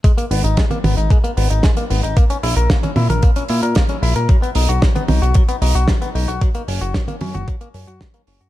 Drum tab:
HH |xxoxxxoxxxoxxxox|xxoxxxoxxxoxxxox|xxoxxxoxxxoxxxox|xxoxxxoxxxoxxxox|
SD |----o-------o---|----o-------o---|----o-------o---|----o-------o---|
T1 |-----oo---------|-----ooo--------|-----oo---------|-----ooo--------|
BD |o---o---o---o---|o---o---o---o---|o---o---o---o---|o---o---o---o---|